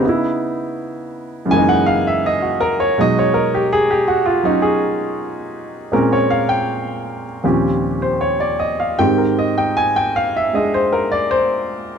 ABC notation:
X:1
M:4/4
L:1/16
Q:"Swing" 1/4=80
K:Ablyd
V:1 name="Grand piano"
z8 a _g f _f e _G B _d | ^d _d B G ^G =G ^F =F ^D ^G z6 | B _d f g4 z4 c d =d e f | g B e g a g f _f e c B d c4 |]
V:2 name="Grand piano" clef=bass
[_D,_CE_F]8 [_G,,D,_F,A,B,E]8 | [=B,,^F,^G,^D]8 [F,_D]8 | [B,,A,C_D]8 [E,,B,,F,CDG]8 | [A,,E,CG]8 [A,DA]8 |]